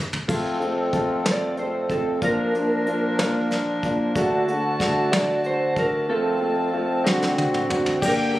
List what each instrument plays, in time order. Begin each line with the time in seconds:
0.13 floor tom
0.28 harmonium F2 F3 C4 A4, grand piano A3 C4 F4, kick, crash
0.60 grand piano A3 C4 F4, closed hi-hat
0.93 grand piano A3 C4 F4, kick, closed hi-hat
1.25 grand piano A3 C4 F4, electric slide guitar D5, snare, closed hi-hat
1.57 grand piano A3 C4 F4, electric slide guitar C5, closed hi-hat
1.90 grand piano A3 C4 F4, electric slide guitar A4, kick, closed hi-hat
2.21 harmonium A#2 D4 A#4, grand piano A#3 D4 F4, electric slide guitar A#4, kick, closed hi-hat
2.54 grand piano A#3 D4 F4, closed hi-hat
2.87 grand piano A#3 D4 F4, closed hi-hat
3.19 grand piano A#3 D4 F4, snare, closed hi-hat
3.51 grand piano D4 F4, snare, closed hi-hat
3.83 grand piano A#3 D4 F4, kick, closed hi-hat
4.15 harmonium D2 D3 F#4 A5, grand piano A3 D4 F#4, kick, closed hi-hat
4.48 grand piano A3 D4 F#4, closed hi-hat
4.80 grand piano A3 D4 F#4, kick, snare, closed hi-hat
5.11 grand piano A3 D4 F#4, electric slide guitar D5, snare, closed hi-hat
5.44 grand piano A3 D4 F#4, electric slide guitar C5, closed hi-hat
5.76 grand piano A3 D4 F#4, electric slide guitar A#4, kick, closed hi-hat
6.09 harmonium F2 F3 C4, grand piano A3 C4 F4, electric slide guitar A4
6.40 grand piano A3 C4 F4
6.73 grand piano A3 C4 F4
7.04 harmonium D2 D3 F#4, grand piano C4 D4 F#4, snare
7.22 snare
7.37 grand piano C4 D4 F#4, high tom
7.54 mid tom
7.69 grand piano C4 D4 F#4, mid tom
7.86 floor tom
8.01 harmonium G2 D3 A#3 G4, grand piano A#3 D4 G4, violin section G5, kick, crash
8.05 electric slide guitar A#4
8.33 grand piano A#3 D4 G4, ride